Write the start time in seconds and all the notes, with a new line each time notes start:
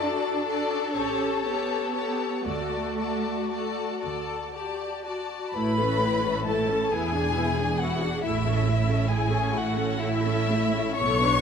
Already playing: F#2 A4 D5 A5
0.00 D4 F#4 A4
0.46 F#4 A4 D5 A5
0.92 A1 C#4 G4 A4 C#5 A5
1.43 B3 G4 A4 C#5 A5
1.94 G4 A4 C#5 A5
2.46 D2 A3 F#4 A4 D5 A5
2.98 F#4 A4 D5 A5
3.50 F#4 A4 D5 A5
4.02 D2 A4 D5 A5
4.54 G4 D5 A5
5.05 F#4 D5 A5
5.54 A1 A2 A3 E4 B4 B5
5.79 C#4 A4
6.01 A3 E4
6.23 C#4 A4
6.46 A3 E4 A4 A5
6.69 C#4 A4
6.90 E1 E2 B3 E4 G#4 G#5
7.15 D4 G#4
7.38 B3 E4
7.59 D4 G#4
7.80 B3 E4 F#4 F#5
8.03 D4 G#4
8.23 A1 A2 A3 E4 E5
8.47 C#4 A4
8.68 A3 E4
8.89 C#4 A4
9.09 A3 E4 G#4 G#5
9.32 C#4 A4
9.55 A1 A2 A3 E4 F#4 F#5
9.78 C#4 A4
10.01 A3 E4 E5
10.26 C#4 A4
10.51 A3 E4
10.77 C#4 A4
10.97 B1 B2 B3 A4 C#5 C#6
11.23 D4 B4